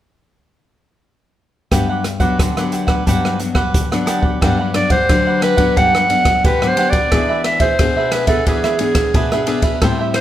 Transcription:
1.71 nylon-string guitar G2 F#3 B3 D4, cavaquinho D4 G4 B4 F#5, kick, cross-stick, closed hi-hat
1.89 cavaquinho G4 B4 F#5
2.04 muted cavaquinho stroke, cross-stick, closed hi-hat
2.20 nylon-string guitar F#3 B3 D4, cavaquinho G4 B4 F#5, kick, closed hi-hat
2.39 nylon-string guitar D3, cavaquinho D4 G4 B4 F#5, kick, cross-stick, closed hi-hat
2.57 nylon-string guitar F#3 B3 D4, cavaquinho G4 B4 F#5, cross-stick, closed hi-hat
2.72 cavaquinho D4 G4 B4 F#5, closed hi-hat
2.87 cavaquinho G4 B4 F#5, kick, cross-stick
3.06 nylon-string guitar G2 F#3 B3 D4, cavaquinho D4 G4 B4 F#5, kick, closed hi-hat
3.25 cross-stick
3.39 nylon-string guitar F#3 B3 D4, muted cavaquinho stroke, closed hi-hat
3.55 cavaquinho G4 B4 F#5, kick, cross-stick
3.74 nylon-string guitar D3, kick, closed hi-hat
3.92 nylon-string guitar F#3 B3 D4, cavaquinho G4 B4 F#5, cross-stick, closed hi-hat
4.06 cavaquinho D4 G4 B4 F#5, cross-stick, closed hi-hat
4.22 cavaquinho G4 B4 F#5, kick
4.41 nylon-string guitar G2 F#3 B3 D4, cavaquinho D4 G4 B4 F#5, kick, cross-stick, ride
4.59 cavaquinho G4 B4 F#5
4.74 nylon-string guitar F#3 B3 D4, clarinet D5, muted cavaquinho stroke, cross-stick, ride
4.90 cavaquinho G4 F#5, clarinet C5, kick, ride
5.09 nylon-string guitar D3 F#3 D4, kick, cross-stick, ride
5.27 cavaquinho G4 B4 F#5
5.41 cavaquinho D4 G4 B4 F#5, clarinet B4, cross-stick, ride
5.57 nylon-string guitar F#3 B3 D4, cavaquinho G4 B4 F#5, kick, ride
5.76 nylon-string guitar G2, cavaquinho D4 G4 B4 F#5, clarinet F#5, kick, ride
5.95 cavaquinho G4 B4 F#5, cross-stick
6.09 nylon-string guitar F#3 B3 D4, muted cavaquinho stroke, ride
6.25 kick, cross-stick, ride
6.44 nylon-string guitar D3, cavaquinho D4 G4 B4 F#5, clarinet B4, kick, ride
6.62 nylon-string guitar F#3 B3 D4, cavaquinho G4 B4 F#5, cross-stick
6.68 clarinet C5
6.77 nylon-string guitar F#3 B3 D4, cavaquinho D4 G4 B4 F#5, ride
6.90 cavaquinho B4 F#5, clarinet D5, kick, ride
6.95 cavaquinho G4
7.11 nylon-string guitar E3 B3 D4 G#4, cavaquinho D4 G#4 B4 E5, kick, cross-stick, ride
7.29 cavaquinho G#4 B4 E5
7.44 clarinet E5, muted cavaquinho stroke, cross-stick, ride
7.60 cavaquinho G#4 E5, clarinet C5, kick, ride
7.79 nylon-string guitar B2 D4 G#4, kick, cross-stick, ride
7.97 cavaquinho G#4 B4 E5
8.11 cavaquinho D4 G#4 B4 E5, clarinet B4, cross-stick, ride
8.27 nylon-string guitar B3 D4 G#4, cavaquinho G#4 B4 E5, clarinet A4, kick, ride
8.46 nylon-string guitar E3, cavaquinho D4 G#4 B4 E5, clarinet G#4, kick, ride
8.64 cavaquinho G#4 B4 E5, cross-stick
8.79 nylon-string guitar B3 D4 G#4, muted cavaquinho stroke, ride
8.95 kick, cross-stick, ride
9.14 nylon-string guitar B2, cavaquinho D4 G#4 B4 E5, kick, ride
9.32 nylon-string guitar B3 D4 G#4, cavaquinho G#4 B4 E5, cross-stick
9.46 nylon-string guitar B3 D4 G#4, cavaquinho D4 G#4 B4 E5, ride
9.62 cavaquinho G#4 B4 E5, kick, ride
9.82 nylon-string guitar A2 G3 C4 E4, cavaquinho A4 C5 E5 G5, kick, cross-stick, ride
9.99 cavaquinho C5 E5 G5
10.14 clarinet C5, muted cavaquinho stroke, cross-stick, ride

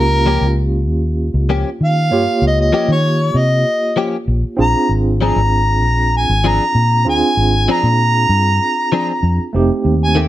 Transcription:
Already playing: fingered electric bass C#2, tine electric piano A#3 C#4 F4 G4
0.00 harmonica A#4
0.26 clean electric guitar F3 A#3 C#4 G4
0.41 fingered electric bass C#2
0.88 fingered electric bass D#2
1.34 fingered electric bass C#2
1.49 clean electric guitar F3 A#3 C#4 G4
1.81 fingered electric bass D#3, harmonica F5
2.10 fingered electric bass G2, tine electric piano A#3 F4 G4 C#5
2.42 fingered electric bass C#2
2.47 harmonica D#5
2.61 harmonica D#5
2.73 clean electric guitar F3 A#3 C#4 G4
2.88 fingered electric bass D#3, harmonica C#5
3.34 fingered electric bass C3, harmonica D#5
3.96 clean electric guitar F3 A#3 C#4 G4
4.28 fingered electric bass A#1
4.44 muted fingered electric bass stroke
4.57 fingered electric bass A#1, tine electric piano C4 D4 F4 G#4
4.61 harmonica A#5
4.89 fingered electric bass G#1
5.21 clean electric guitar F3 C4 D4 G#4, harmonica A#5
5.36 fingered electric bass G#1
5.82 fingered electric bass A#1
6.16 harmonica G#5
6.29 fingered electric bass G#1
6.44 clean electric guitar F3 C4 D4 G#4, harmonica A#5
6.75 fingered electric bass A#2
7.05 fingered electric bass D2, tine electric piano C4 D4 F4 G#4
7.09 harmonica G#5
7.37 fingered electric bass G#1
7.68 clean electric guitar F3 C4 D4 G#4, harmonica A#5
7.83 fingered electric bass A#2
8.29 fingered electric bass G2
8.92 clean electric guitar F3 C4 D4 G#4
9.23 fingered electric bass F2
9.39 muted fingered electric bass stroke
9.53 fingered electric bass F1, tine electric piano A3 C4 D#4 G4
9.85 fingered electric bass D#2
10.04 harmonica G#5
10.15 clean electric guitar D#3 A3 C4 G4

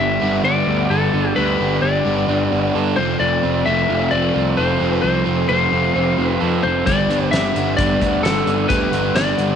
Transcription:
Already playing: distorted electric guitar G2 D3 G3, overdriven electric guitar G3 D4
0.00 picked electric bass G1, lead electric guitar E5
0.20 picked electric bass G1, distorted electric guitar G2 D3 G3, overdriven electric guitar B3
0.44 picked electric bass G1, overdriven electric guitar D4, lead electric guitar D5
0.67 picked electric bass D2, overdriven electric guitar B3
0.90 picked electric bass G1, lead electric guitar A4, overdriven electric guitar A4
1.14 picked electric bass G1, overdriven electric guitar D4
1.35 picked electric bass D2, distorted electric guitar G2 D3 G3, overdriven electric guitar G3, lead electric guitar B4
1.61 picked electric bass G1, overdriven electric guitar D4
1.82 picked electric bass G1, overdriven electric guitar G3, lead electric guitar D5
2.05 picked electric bass G1, distorted electric guitar G2 D3 G3, overdriven electric guitar B3
2.28 picked electric bass G1, overdriven electric guitar D4
2.52 picked electric bass G1, overdriven electric guitar B3
2.75 picked electric bass G2, overdriven electric guitar A4
2.96 picked electric bass F1, distorted electric guitar F2 C3 F3, overdriven electric guitar F3, lead electric guitar C5
3.20 picked electric bass F1, overdriven electric guitar F3, lead electric guitar D5
3.43 picked electric bass F1, overdriven electric guitar C4
3.66 picked electric bass F1, distorted electric guitar F2 C3 F3, overdriven electric guitar A3, lead electric guitar E5
3.90 picked electric bass F1, overdriven electric guitar F4
4.11 picked electric bass F1, overdriven electric guitar C4, lead electric guitar D5
4.34 picked electric bass C2, overdriven electric guitar F4
4.57 picked electric bass F1, overdriven electric guitar A4, lead electric guitar C5
4.79 picked electric bass F1, distorted electric guitar F2 C3, overdriven electric guitar C4
4.84 distorted electric guitar F3
5.02 picked electric bass C2, overdriven electric guitar F3, lead electric guitar C5
5.25 picked electric bass F1, overdriven electric guitar C4
5.48 picked electric bass F1, distorted electric guitar F2 C3 F3, overdriven electric guitar A3, lead electric guitar C5
5.72 picked electric bass F1, overdriven electric guitar F4
5.95 picked electric bass F1, overdriven electric guitar C4
6.18 picked electric bass F1, overdriven electric guitar F4
6.27 lead electric guitar B4
6.41 picked electric bass F2, overdriven electric guitar A4
6.63 picked electric bass F1, overdriven electric guitar C4, lead electric guitar C5
6.86 picked electric bass G1, distorted electric guitar G2 D3 G3, overdriven electric guitar G3, lead electric guitar D5, kick, closed hi-hat
7.09 picked electric bass G1, overdriven electric guitar D4, closed hi-hat
7.31 picked electric bass G1, overdriven electric guitar G3, lead electric guitar E5, snare, closed hi-hat
7.54 picked electric bass G1, distorted electric guitar G2 D3 G3, overdriven electric guitar B3, closed hi-hat
7.77 picked electric bass G1, overdriven electric guitar D4, lead electric guitar D5, kick, closed hi-hat
8.00 picked electric bass D2, overdriven electric guitar B3, kick, closed hi-hat
8.23 picked electric bass G1, overdriven electric guitar A4, lead electric guitar A4, snare, closed hi-hat
8.47 picked electric bass G1, overdriven electric guitar D4, closed hi-hat
8.68 picked electric bass D2, distorted electric guitar G2 D3 G3, overdriven electric guitar G3, lead electric guitar B4, kick, closed hi-hat
8.91 picked electric bass G1, overdriven electric guitar D4, closed hi-hat
9.15 picked electric bass G1, overdriven electric guitar G3, lead electric guitar D5, snare, closed hi-hat
9.38 picked electric bass G1, distorted electric guitar G2 D3 G3, overdriven electric guitar B3, closed hi-hat

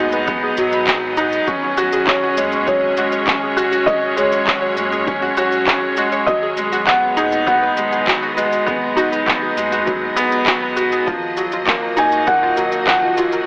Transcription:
Already playing: analog synth bass D#2, upright piano F#3 G#3 B3 D#4, string section F#3 B3 G#4 D#5, felt piano F#5
0.12 synth arpeggio sound B4, shaker
0.27 upright piano B3, kick, shaker
0.44 synth arpeggio sound G#4
0.57 analog synth bass G#2, upright piano F#3, shaker
0.72 synth arpeggio sound B5, shaker
0.87 upright piano F#3, synth arpeggio sound D#5, kick, clap, shaker
1.17 upright piano D#4, synth arpeggio sound F#5, shaker
1.32 shaker
1.47 analog synth bass G#1, upright piano C#4, synth arpeggio sound F#4, kick, shaker
1.63 string section C#4, synth arpeggio sound C#5
1.77 upright piano F#4, shaker
1.93 synth arpeggio sound G#4, shaker
2.07 upright piano C#4, felt piano C#5, kick, clap, shaker
2.22 synth arpeggio sound F#4, string section C#5
2.37 analog synth bass D#2, upright piano G#3, synth arpeggio sound C#5, shaker
2.52 shaker
2.66 upright piano F#3, synth arpeggio sound G#4, felt piano C#5, kick, shaker
2.97 analog synth bass G#1, upright piano G#3, synth arpeggio sound F#4, shaker
3.12 synth arpeggio sound C#5, shaker
3.27 upright piano C#4, kick, clap, shaker
3.43 synth arpeggio sound G#4
3.57 upright piano F#4, shaker
3.72 synth arpeggio sound F#4, shaker
3.86 analog synth bass G#1, upright piano C#4, synth arpeggio sound C#5, felt piano D#5, kick, shaker
4.16 upright piano G#3, synth arpeggio sound G#4, felt piano C#5, shaker
4.32 shaker
4.47 upright piano F#3, synth arpeggio sound F#4, kick, clap, shaker
4.62 synth arpeggio sound C#5
4.77 analog synth bass D#2, upright piano G#3, shaker
4.92 synth arpeggio sound G#4, shaker
5.07 upright piano C#4, kick, shaker
5.22 synth arpeggio sound F#4
5.37 upright piano F#4, synth arpeggio sound C#5, shaker
5.52 shaker
5.67 upright piano C#4, synth arpeggio sound G#4, kick, clap, shaker
5.97 upright piano G#3, synth arpeggio sound F#4, shaker
6.12 synth arpeggio sound C#5, shaker
6.26 analog synth bass G#1, upright piano F#3, felt piano D#5, kick, shaker
6.43 synth arpeggio sound G#4
6.52 string section B3
6.57 upright piano G#3, shaker
6.72 synth arpeggio sound F#4, shaker
6.87 upright piano B3, synth arpeggio sound B4, felt piano F#5, kick, clap, shaker
7.16 analog synth bass D#2, upright piano D#4, synth arpeggio sound G#4, shaker
7.32 shaker
7.47 upright piano B3, synth arpeggio sound F#4, felt piano F#5, kick, shaker
7.63 synth arpeggio sound B4
7.77 analog synth bass G#1, upright piano G#3, shaker
7.92 synth arpeggio sound G#4, shaker
7.97 string section D#5
8.07 upright piano F#3, kick, clap, shaker
8.23 synth arpeggio sound F#4
8.37 upright piano G#3, synth arpeggio sound B4, shaker
8.52 shaker
8.67 analog synth bass G#1, upright piano B3, synth arpeggio sound G#4, kick, shaker
8.97 upright piano D#4, synth arpeggio sound F#4, shaker
9.12 synth arpeggio sound B4, shaker
9.27 upright piano B3, kick, clap, shaker
9.42 synth arpeggio sound G#4
9.57 analog synth bass D#2, upright piano G#3, shaker
9.72 synth arpeggio sound F#4, shaker
9.86 upright piano F#3, synth arpeggio sound B4, kick, shaker
10.16 upright piano B3, synth arpeggio sound G#4, shaker
10.32 shaker
10.46 analog synth bass C#2, upright piano F#3, synth arpeggio sound F#4, kick, clap, shaker
10.62 synth arpeggio sound B4
10.76 upright piano F#4, shaker
10.92 synth arpeggio sound G#4, shaker
11.06 analog synth bass G#1, upright piano F3, synth arpeggio sound A#4, kick, shaker
11.37 upright piano F#3, synth arpeggio sound F#4, shaker
11.52 synth arpeggio sound F4, shaker
11.58 string section A#3
11.67 upright piano A#3, synth arpeggio sound F4, kick, clap, shaker
11.76 string section F#4
11.83 synth arpeggio sound A#4
11.97 analog synth bass D#2, upright piano D#4, felt piano G#5, shaker
12.12 synth arpeggio sound F#4, shaker
12.27 upright piano A#3, synth arpeggio sound F4, felt piano F#5, kick, shaker
12.43 synth arpeggio sound F4
12.56 analog synth bass G#1, upright piano F#3, synth arpeggio sound A#4, shaker
12.72 shaker
12.87 upright piano F3, synth arpeggio sound F#4, felt piano F#5, kick, clap, shaker
13.03 synth arpeggio sound F4
13.17 upright piano F#3, synth arpeggio sound F4, shaker
13.32 synth arpeggio sound A#4, shaker

